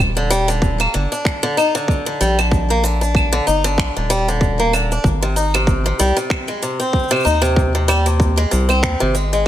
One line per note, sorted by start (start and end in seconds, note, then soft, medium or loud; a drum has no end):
0.00 0.88 D#1 loud
0.00 claves medium
0.00 shaker soft
0.17 0.30 D3 medium
0.30 0.48 G3 medium
0.30 shaker medium
0.48 0.78 D3 medium
0.48 shaker soft
0.62 kick medium
0.62 shaker soft
0.80 0.93 A#3 medium
0.80 claves medium
0.94 1.07 G1 loud
0.94 1.11 D3 medium
1.12 1.42 D4 medium
1.12 shaker soft
1.25 finger snap medium
1.25 kick medium
1.25 shaker soft
1.43 1.56 D3 loud
1.57 1.73 D#4 medium
1.57 claves medium
1.57 shaker medium
1.75 2.05 D3 medium
1.75 shaker soft
1.88 kick loud
1.88 shaker soft
2.06 2.19 D3 medium
2.21 3.41 A#1 medium
2.21 2.38 G3 medium
2.21 shaker medium
2.39 2.68 D3 medium
2.39 claves medium
2.39 shaker soft
2.52 kick medium
2.52 shaker soft
2.70 2.83 A#3 medium
2.84 3.01 D3 medium
2.84 shaker medium
3.01 3.31 D4 medium
3.01 shaker soft
3.15 kick medium
3.15 claves medium
3.15 shaker soft
3.33 3.45 D3 medium
3.47 3.79 G1 loud
3.47 3.63 D#4 medium
3.47 shaker medium
3.64 3.94 D3 loud
3.64 shaker soft
3.78 3.91 A#1 medium
3.78 finger snap medium
3.78 kick medium
3.78 shaker soft
3.97 4.99 D#1 medium
3.97 4.09 D3 medium
4.10 4.27 G3 loud
4.10 shaker medium
4.28 4.58 D3 medium
4.28 shaker soft
4.41 kick loud
4.41 shaker soft
4.60 4.72 A#3 medium
4.73 4.90 D3 medium
4.73 claves medium
4.73 shaker medium
4.92 5.05 D4 medium
4.92 shaker soft
5.04 5.93 G#1 loud
5.04 kick medium
5.04 shaker soft
5.22 5.35 C3 medium
5.36 5.52 D#4 medium
5.36 shaker medium
5.54 5.84 C3 medium
5.54 claves medium
5.54 shaker soft
5.67 kick medium
5.67 shaker soft
5.86 5.98 C3 medium
5.99 6.12 C2 loud
5.99 6.16 G3 medium
5.99 shaker medium
6.17 6.47 C3 medium
6.17 shaker soft
6.30 finger snap medium
6.30 kick loud
6.30 claves medium
6.30 shaker soft
6.48 6.61 G#3 medium
6.62 6.79 C3 medium
6.62 shaker medium
6.80 7.10 C4 medium
6.80 shaker soft
6.93 kick medium
6.93 shaker soft
6.99 shaker soft
7.03 shaker soft
7.08 7.24 C3 loud
7.08 shaker soft
7.13 claves medium
7.13 shaker soft
7.16 claves medium
7.16 shaker soft
7.20 claves soft
7.20 shaker soft
7.23 8.46 D#2 medium
7.23 7.41 D#4 medium
7.23 claves soft
7.23 shaker soft
7.26 claves soft
7.26 shaker medium
7.30 claves soft
7.35 claves soft
7.40 7.72 C3 medium
7.40 claves soft
7.44 shaker soft
7.56 kick loud
7.56 shaker soft
7.75 7.88 C3 medium
7.88 8.05 G3 medium
7.88 claves medium
7.88 shaker medium
8.06 8.36 C3 medium
8.06 shaker soft
8.20 kick loud
8.20 shaker soft
8.37 8.50 G#3 medium
8.51 8.85 C2 loud
8.51 8.69 C3 medium
8.51 shaker medium
8.69 8.99 C4 medium
8.69 claves medium
8.69 shaker soft
8.83 8.96 D#2 medium
8.83 finger snap medium
8.83 kick medium
8.83 shaker soft
9.00 9.48 G#1 medium
9.00 9.13 C3 medium
9.15 9.32 G#3 medium
9.15 shaker medium
9.33 9.46 G#3 medium
9.33 shaker soft